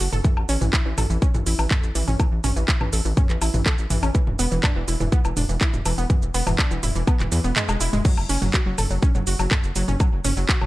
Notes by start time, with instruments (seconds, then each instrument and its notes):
0.00 analog synth bass F#1, synth arpeggio sound F#4, open hi-hat, shaker
0.12 analog synth bass F#1, synth arpeggio sound A4, mid tom, shaker
0.24 synth arpeggio sound E3, kick, mid tom, shaker
0.37 analog synth bass A1, low woodblock
0.49 analog synth bass A1, synth arpeggio sound C#4, open hi-hat, shaker
0.61 analog synth bass A1, synth arpeggio sound E3, mid tom, shaker
0.73 synth arpeggio sound E4, kick, clap, shaker
0.86 analog synth bass A1, synth arpeggio sound E3
0.98 analog synth bass A1, synth arpeggio sound A4, mid tom, open hi-hat, low woodblock, shaker
1.10 analog synth bass A1, synth arpeggio sound E3, shaker
1.22 synth arpeggio sound C#4, kick, shaker
1.34 analog synth bass A1, synth arpeggio sound E3, mid tom, shaker
1.46 analog synth bass A1, synth arpeggio sound E4, open hi-hat, shaker
1.59 analog synth bass A1, synth arpeggio sound E3, low woodblock, shaker
1.71 synth arpeggio sound A4, kick, clap, mid tom, shaker
1.83 analog synth bass A1, shaker
1.95 analog synth bass A1, synth arpeggio sound E3, open hi-hat, shaker
2.08 analog synth bass A1, synth arpeggio sound C#4, mid tom, shaker
2.20 synth arpeggio sound E3, kick, low woodblock, shaker
2.32 analog synth bass A1
2.44 analog synth bass A1, synth arpeggio sound C#4, mid tom, open hi-hat, shaker
2.56 analog synth bass A1, synth arpeggio sound E3, shaker
2.68 synth arpeggio sound E4, kick, clap, shaker
2.81 analog synth bass A1, synth arpeggio sound E3, mid tom, low woodblock
2.93 analog synth bass A1, synth arpeggio sound A4, open hi-hat, shaker
3.05 analog synth bass A1, synth arpeggio sound E3, shaker
3.17 synth arpeggio sound C#4, kick, mid tom, shaker
3.30 analog synth bass A1, synth arpeggio sound E3, clap, shaker
3.42 analog synth bass A1, synth arpeggio sound E4, open hi-hat, low woodblock, shaker
3.54 analog synth bass A1, synth arpeggio sound E3, mid tom, shaker
3.66 synth arpeggio sound A4, kick, clap, shaker
3.78 analog synth bass A1, shaker
3.90 analog synth bass A1, synth arpeggio sound E3, mid tom, open hi-hat, shaker
4.03 analog synth bass A1, synth arpeggio sound C#4, low woodblock, shaker
4.15 synth arpeggio sound E3, kick, shaker
4.27 analog synth bass E1, mid tom
4.39 analog synth bass E1, synth arpeggio sound B3, open hi-hat, shaker
4.52 analog synth bass E1, synth arpeggio sound E3, shaker
4.63 synth arpeggio sound D4, kick, clap, mid tom, low woodblock, shaker
4.76 analog synth bass E1, synth arpeggio sound E3
4.88 analog synth bass E1, synth arpeggio sound E4, open hi-hat, shaker
5.00 analog synth bass E1, synth arpeggio sound E3, mid tom, shaker
5.12 synth arpeggio sound B3, kick, shaker
5.25 analog synth bass E1, synth arpeggio sound E3, low woodblock, shaker
5.37 analog synth bass E1, synth arpeggio sound D4, mid tom, open hi-hat, shaker
5.49 analog synth bass E1, synth arpeggio sound E3, shaker
5.61 synth arpeggio sound E4, kick, clap, shaker
5.73 analog synth bass E1, mid tom, shaker
5.85 analog synth bass E1, synth arpeggio sound E3, open hi-hat, low woodblock, shaker
5.98 analog synth bass E1, synth arpeggio sound B3, shaker
6.10 synth arpeggio sound E3, kick, mid tom, shaker
6.22 analog synth bass E1, shaker
6.34 analog synth bass E1, synth arpeggio sound B3, open hi-hat, shaker
6.47 analog synth bass E1, synth arpeggio sound E3, mid tom, low woodblock, shaker
6.59 synth arpeggio sound D4, kick, clap, shaker
6.71 analog synth bass E1, synth arpeggio sound E3, shaker
6.83 analog synth bass E1, synth arpeggio sound E4, mid tom, open hi-hat, shaker
6.95 analog synth bass E1, synth arpeggio sound E3, shaker
7.07 synth arpeggio sound B3, kick, low woodblock, shaker
7.20 analog synth bass E1, synth arpeggio sound E3, clap, mid tom, shaker
7.32 analog synth bass E2, synth arpeggio sound E3, open hi-hat, shaker
7.44 analog synth bass E1, synth arpeggio sound B3, shaker
7.56 synth arpeggio sound G#3, clap, mid tom, shaker
7.69 analog synth bass E1, synth arpeggio sound G#3, low woodblock, shaker
7.81 analog synth bass E1, synth arpeggio sound E4, open hi-hat, shaker
7.93 analog synth bass E1, synth arpeggio sound G#3, mid tom, shaker
8.05 synth arpeggio sound F#3, kick, mid tom, crash, shaker
8.17 analog synth bass F#1, low woodblock
8.29 analog synth bass F#1, synth arpeggio sound C#4, open hi-hat, shaker
8.42 analog synth bass F#1, synth arpeggio sound F#3, mid tom, shaker
8.54 synth arpeggio sound F#4, kick, clap, shaker
8.66 analog synth bass F#1, synth arpeggio sound F#3
8.78 analog synth bass F#1, synth arpeggio sound A4, mid tom, open hi-hat, low woodblock, shaker
8.91 analog synth bass F#1, synth arpeggio sound F#3, shaker
9.03 synth arpeggio sound C#4, kick, shaker
9.15 analog synth bass F#1, synth arpeggio sound F#3, mid tom, shaker
9.27 analog synth bass F#1, synth arpeggio sound F#4, open hi-hat, shaker
9.39 analog synth bass F#1, synth arpeggio sound F#3, low woodblock, shaker
9.51 synth arpeggio sound A4, kick, clap, mid tom, shaker
9.64 analog synth bass F#1, shaker
9.76 analog synth bass F#1, synth arpeggio sound F#3, open hi-hat, shaker
9.88 analog synth bass F#1, synth arpeggio sound C#4, mid tom, shaker
10.00 synth arpeggio sound F#3, kick, low woodblock, shaker
10.13 analog synth bass F#1
10.25 analog synth bass F#1, synth arpeggio sound C#4, mid tom, open hi-hat, shaker
10.37 analog synth bass F#1, synth arpeggio sound F#3, shaker
10.49 synth arpeggio sound F#4, kick, clap, shaker
10.61 analog synth bass F#1, synth arpeggio sound F#3, mid tom, low woodblock